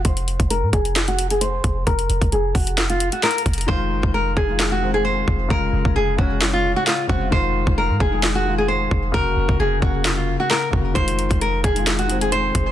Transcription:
0.05 F1 C5, kick, closed hi-hat
0.17 closed hi-hat
0.28 closed hi-hat
0.40 F1, kick, closed hi-hat
0.50 A#4, closed hi-hat
0.62 G#2
0.73 F1 G#4, kick, closed hi-hat
0.85 closed hi-hat
0.96 snare, clap, closed hi-hat
1.08 F#4, closed hi-hat
1.19 closed hi-hat
1.30 G#4, closed hi-hat
1.41 C5, closed hi-hat
1.64 F1, kick, closed hi-hat
1.87 F1 A#4, kick, closed hi-hat
1.99 closed hi-hat
2.09 F1, closed hi-hat
2.21 F1, kick, closed hi-hat
2.32 F1 G#4, closed hi-hat
2.55 F1 F#4, kick, open hi-hat
2.67 closed hi-hat
2.78 snare, clap, closed hi-hat
2.90 F4, closed hi-hat
3.00 closed hi-hat
3.12 F#4, closed hi-hat
3.23 A#4, snare, clap, closed hi-hat
3.31 closed hi-hat
3.38 closed hi-hat
3.46 F1, kick, closed hi-hat
3.53 closed hi-hat
3.58 closed hi-hat
3.61 closed hi-hat
3.66 F1 D#3 G#3 F4 C5, kick
3.91 F#1
4.03 F1, kick
4.14 A#4
4.37 F1 G#4, kick
4.47 D#3 G#3 F4
4.59 snare, clap
4.72 F#4
4.80 D#3 G#3 C4
4.94 G#4
5.05 C5
5.28 F1, kick
5.48 F1 C#3 G#3 F4 A#4, kick
5.73 F1
5.85 F1, kick
5.96 F1 G#4
6.17 F1 C#3 G#3 C#4 F#4, kick
6.41 F#1, snare, clap
6.53 F4
6.59 F1
6.76 F#4
6.87 F4, snare, clap
7.07 F1 C#3 G#3 C4 F#4, kick
7.30 F1 D#3 G#3 F4 C5, kick
7.67 F1, kick
7.78 A#4
7.90 G#2
8.00 F1 G#4, kick
8.11 D#3 G#3 G#4
8.23 snare, clap
8.35 F#4
8.44 D#3 G#3 F4
8.58 G#4
8.68 C5
8.91 F1, kick
9.12 F1 C#3 A#3 F#4 A#4, kick
9.37 F1
9.49 F1, kick
9.59 F1 G#4
9.80 F1 C#3 A#3 F#4, kick
10.05 snare, clap
10.17 F4
10.40 F#4
10.50 A#4, snare, clap
10.71 F1 C#3 A#3 F#4, kick
10.94 F1 D#3 G#3 F4 C5, kick, closed hi-hat
11.08 closed hi-hat
11.19 F#1, closed hi-hat
11.31 F1, kick, closed hi-hat
11.41 A#4, closed hi-hat
11.64 F1 G#4, kick, closed hi-hat
11.74 D#3 G#3 F4, closed hi-hat
11.87 snare, clap, closed hi-hat
11.99 F#4, closed hi-hat
12.07 D#3 G#3 C4, closed hi-hat
12.21 G#4, closed hi-hat
12.32 C5, closed hi-hat
12.55 F1, kick, closed hi-hat

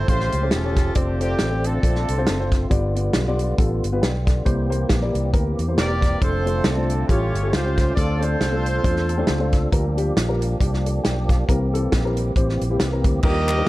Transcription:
Already playing: A3
0.08 A1 A2 C#3 F3 C#4 F4 G4 A4 C5 F5, kick, closed hi-hat
0.20 snare
0.32 C#2, closed hi-hat
0.42 C#4 G4 A4 C5
0.51 E1 C4 C#4 A4, snare, closed hi-hat
0.64 C#4 G4 A4 C#5
0.76 kick, snare, closed hi-hat
0.95 F1 D3 C4 D4 F4 G4 A4 D5, kick, closed hi-hat
1.20 C4 D4 F4 G4 A4 C5, closed hi-hat
1.39 A1, snare, closed hi-hat
1.50 C4 F4 A4 D5
1.64 C4 D4 A4, closed hi-hat
1.83 A#1 C4 F4 A4 D5, kick, closed hi-hat
1.95 snare
2.09 C2, closed hi-hat
2.18 C4 F4 A4 C5
2.27 F#1, snare, closed hi-hat
2.40 C4 F4 A4 C5
2.52 kick, snare, closed hi-hat
2.70 G1 G2 G3 B3 F4 G4 D5, kick, closed hi-hat
2.95 B3 F4 G4 D5, closed hi-hat
3.13 B1, snare, closed hi-hat
3.28 B3 F4 G4 D5
3.39 closed hi-hat
3.58 A1 B3 F4 G4 A4, kick, closed hi-hat
3.83 G1, closed hi-hat
3.92 B3 F4 G4 B4
4.02 B1 D5 G5, snare, closed hi-hat
4.26 A4 D5, kick, snare, closed hi-hat
4.45 C2 C3 E3 A#3 C4 E4 G4 C5, kick, closed hi-hat
4.70 A#3 E4 G4 C5, closed hi-hat
4.89 A#1, kick, snare, closed hi-hat
5.01 A#3 E4 G4 D5
5.14 C2, closed hi-hat
5.33 D2 A#3 E4 G4 A#4, kick, closed hi-hat
5.59 E2, closed hi-hat
5.68 A#3 E4 G4 C5
5.77 E1 G4 A#4 D5, snare, closed hi-hat
5.89 A#3 E4 G4 D5
6.02 kick, snare, closed hi-hat
6.21 F1 D3 A3 C4 D4 F4 A4 C5, kick, closed hi-hat
6.46 A3 D4 F4 C5, closed hi-hat
6.64 C2 C4 D4 A4, snare, closed hi-hat
6.77 A3 D4 F4 C5
6.90 closed hi-hat
7.08 A1 A2 G3 C#4 F4 G4 A4 C#5, kick, closed hi-hat
7.33 G1, closed hi-hat
7.43 G3 C#4 F4 A4
7.53 C#2 F4 G4 C5, snare, closed hi-hat
7.65 G3 C#4 F4 C5
7.78 kick, snare, closed hi-hat
7.94 D2 D3 A3 C4 D4 F4 A4 C5 D5, kick, closed hi-hat
8.20 A3 D4 F4 A4 C5 D5, closed hi-hat
8.41 C2, snare, closed hi-hat
8.52 A3 D4 F4 A4
8.66 closed hi-hat
8.83 E2 A3 D4 F4 C5, kick, closed hi-hat
8.96 snare
9.09 A5, closed hi-hat
9.18 A3 D4 F4 C5 G5
9.27 C#2, snare, closed hi-hat
9.39 A3 D4 F4 C5
9.53 kick, snare, closed hi-hat
9.72 D2 D3 F3 G3 A#3 D4 F4 G4 A#4, kick, closed hi-hat
9.97 G3 D4 F4 G4, closed hi-hat
10.17 A#1, snare, closed hi-hat
10.28 G3 D4 F4 A#4
10.42 closed hi-hat
10.60 C2 G3 D4 F4 G4, kick, closed hi-hat
10.74 snare
10.84 A4 D5, closed hi-hat
11.03 B1 D5 G5, snare, closed hi-hat
11.29 C5 F5, kick, snare, closed hi-hat
11.48 C2 C3 E3 G3 C4 E4 A#4, kick, closed hi-hat
11.73 G3 C4 E4 A4, closed hi-hat
11.92 A#1, kick, snare, closed hi-hat
12.04 G3 C4 E4 A#4
12.17 closed hi-hat
12.36 A1 G3 C4 E4 C5, kick, closed hi-hat
12.49 snare
12.61 A#1, closed hi-hat
12.70 G3 C4 E4 G4
12.80 C2, snare, closed hi-hat
12.92 G3 C4 E4 A#4
13.04 D2, kick, closed hi-hat
13.23 D#2 D#3 F3 G3 A#3 D4 D#4 F4 G4 A#4 D#5, kick, crash
13.48 clap, ride
13.57 G3 D4 D#4 F4 A#4

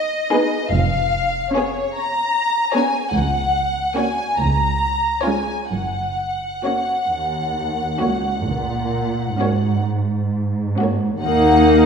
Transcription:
Already playing: D#5
0.33 B3 D#4 G#4 B4
0.69 F1 F2 F5
1.52 B3 C#4 G#4 C#5
1.96 A#5
2.74 B3 C#4 G#4 C#5 G#5
3.13 C#2 F#5
3.94 A#3 C#4 F#4 C#5 G#5
4.37 C#2 A#5
5.23 G#3 C#4 F4 C#5 G#5
5.68 F#1 F#2 F#5
6.63 A#3 C#4 F#4 C#5
7.08 D#2
7.99 C#2 A#3 C#4 F#4 C#5
8.46 C#2 A#2
9.39 G#2 A#3 C#4 F#4 C#5
10.80 A#3 C#4 F#4 C#5
11.21 D#2 A#3 D#4 F#5

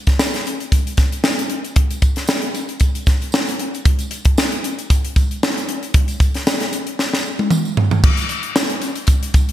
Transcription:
0.07 kick, snare, closed hi-hat
0.19 snare, tambourine
0.34 snare, closed hi-hat
0.46 closed hi-hat, tambourine
0.60 closed hi-hat, tambourine
0.72 kick, closed hi-hat, tambourine
0.87 closed hi-hat, tambourine
0.97 kick, snare, closed hi-hat, tambourine
1.12 closed hi-hat, tambourine
1.24 snare, tambourine
1.39 closed hi-hat, tambourine
1.50 closed hi-hat
1.64 closed hi-hat, tambourine
1.76 kick, closed hi-hat
1.90 closed hi-hat, tambourine
2.02 kick, closed hi-hat, tambourine
2.16 snare, closed hi-hat
2.27 snare, tambourine
2.42 closed hi-hat
2.55 closed hi-hat, tambourine
2.68 closed hi-hat, tambourine
2.80 kick, closed hi-hat, tambourine
2.95 closed hi-hat, tambourine
3.06 kick, snare, closed hi-hat, tambourine
3.21 closed hi-hat, tambourine
3.32 snare, tambourine
3.47 closed hi-hat, tambourine
3.59 closed hi-hat
3.74 closed hi-hat, tambourine
3.85 kick, closed hi-hat
3.99 closed hi-hat, tambourine
4.11 closed hi-hat, tambourine
4.25 kick, closed hi-hat
4.38 snare, tambourine
4.52 closed hi-hat
4.64 closed hi-hat, tambourine
4.79 closed hi-hat, tambourine
4.90 kick, closed hi-hat, tambourine
5.05 closed hi-hat
5.16 kick, closed hi-hat, tambourine
5.31 closed hi-hat, tambourine
5.43 snare, tambourine
5.57 closed hi-hat, tambourine
5.69 closed hi-hat
5.83 closed hi-hat, tambourine
5.94 kick, closed hi-hat
6.08 closed hi-hat, tambourine
6.20 kick, closed hi-hat, tambourine
6.34 snare, closed hi-hat
6.47 snare, tambourine
6.60 snare, closed hi-hat
6.73 closed hi-hat, tambourine
6.87 closed hi-hat
6.99 snare, tambourine
7.13 snare, tambourine
7.25 tambourine
7.39 high tom, tambourine
7.51 mid tom, tambourine
7.65 tambourine
7.77 floor tom
7.91 floor tom, tambourine
8.04 kick, crash
8.17 closed hi-hat, tambourine
8.29 closed hi-hat, tambourine
8.43 closed hi-hat
8.56 snare, tambourine
8.69 closed hi-hat
8.82 closed hi-hat, tambourine
8.96 closed hi-hat, tambourine
9.07 kick, closed hi-hat, tambourine
9.23 closed hi-hat, tambourine
9.34 kick, closed hi-hat, tambourine
9.49 closed hi-hat

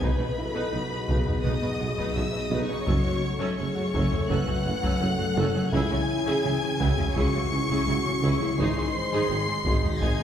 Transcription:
Already playing: D#5
0.00 B1 B2 F#3 B3 D#4 F#4 B4 B5, taiko
0.19 B2 D#4 B4
0.36 E4 A4
0.54 B2 B3 D#4 B4
0.73 B1 B2 D#4 G#4 B4
0.90 B2 B3 F#4 B4
1.08 B1 B2 B3 D#4 B4, taiko
1.26 B2 D#4 F#4 B4, taiko low
1.43 B1 B2 B3 D#4 B4 D#5 D#6, taiko
1.62 B2 D#4 B4
1.80 B1 B2 B3 F#4
1.98 B2 B3 D#4 B4, taiko
2.15 B1 B2 D#4 F#4 B4 E5 E6
2.33 B2 B3 F#4 B4
2.38 D#5 D#6
2.50 B1 B2 B3 D#4 B4 D#5
2.62 C#5 C#6
2.68 B2 D#4 B4
2.86 F#1 F#2 F#3 A3 C#4 F#4 A4 C#5, taiko
3.04 F#2 C#4 F#4 A4
3.23 A4
3.39 F#2 F#3 C#4 A4
3.57 F#1 F#2 A3 C#4 G#4 A4 C#5 C#6
3.75 F#2 A3 F#4
3.93 F#1 F#2 F#3 C#4 A4, taiko
4.11 F#2 C#4 A4, taiko low
4.29 F#1 F#2 F#3 C#4 A4 B4 F#5 F#6, taiko
4.47 F#2 C#4 F#4 A4
4.65 F#1 F#2 A3 C#4 F#4
4.83 F#2 F#3 C#4 A4, taiko
5.00 F#1 F#2 C#4 A4
5.19 F#2 A3 F#4
5.36 F#1 F#2 F#3 C#4 A4
5.55 F#2 A3 C#4 A4
5.72 C#2 C#3 E3 E4 G#4 E5 G#5 G#6, taiko
5.91 C#3 C#4 E4 G#4
6.26 C#3 E4 G#4
6.44 C#2 C#3 E3 E4 G#4
6.62 C#3 C#4 E4
6.79 C#2 C#3 E4 F#4 G#4 F#5, taiko
6.98 C#3 G#3 E4 G#4, taiko low
7.15 C#2 C#3 E4 F#4 G#4 C#6 C#7, taiko
7.34 C#3 C#4 E4 G#4
7.49 C#2 C#3 G#3 C#4 E4
7.69 C#3 E4 G#4, taiko
7.86 C#2 C#3 G#3 E4 F#4 G#4
8.04 C#3 C#4 E4
8.21 C#2 C#3 E4 G#4
8.40 C#3 E3 E4 G#4
8.58 G#1 G#2 D#3 G#3 D#4 G#4 D#5 C6 C7, taiko
8.76 G#2 D#4 G#4
8.93 C5
9.12 G#2 G#3 D#4 G#4
9.30 G#1 G#2 C4 D#4 G#4
9.48 G#2 C4 D#4 G#4
9.65 G#1 G#2 G#3 D#4 F#4 G#4, taiko
9.84 G#2 D#4 G#4, taiko low
10.00 G#1 G#2 G#3 D#4 G#4 G#5 G#6, taiko
10.19 D#4 G#4

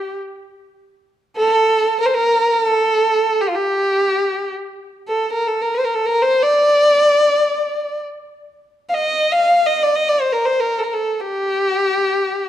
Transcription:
Already playing: G4
1.37 A4
2.00 A#4
2.06 C5
2.14 A#4
2.52 A4
3.41 G4
3.48 F4
3.55 G4
5.08 A4
5.33 A#4
5.47 A4
5.62 A#4
5.75 C5
5.84 A#4
5.94 A4
6.06 A#4
6.22 C5
6.43 D5
8.89 F5
8.94 D#5
9.32 F5
9.66 D#5
9.83 D5
9.96 D#5
10.08 D5
10.22 C5
10.32 A#4
10.45 C5
10.60 A#4
10.79 A4
10.83 A#4
10.93 A4
11.20 G4

